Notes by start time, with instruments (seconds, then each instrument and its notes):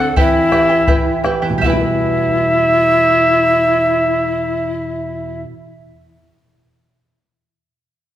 Already playing: nylon-string guitar D3 C4, pan flute A4, quena F#5
0.00 charango F#4 D5 F#5
0.16 nylon-string guitar E3, charango E4 G4 B4 E5 G5, pan flute E4, quena E5, bombo low
0.52 charango E4 B4 E5 G5, nylon-string guitar G4, bombo rim
0.69 charango E4 B4 G5
0.87 charango E4 G4 B4 E5 G5, nylon-string guitar B4, bombo low
1.24 charango E4 B4 E5 G5, nylon-string guitar G4, bombo rim
1.42 nylon-string guitar E2, charango E4 B4 G5
1.50 nylon-string guitar B2
1.58 nylon-string guitar G3, charango G4 E5
1.63 nylon-string guitar B3, pan flute E4, charango E4 B4, quena F#5, bombo low
1.67 quena E5, charango G5
1.73 nylon-string guitar E4
1.81 nylon-string guitar B4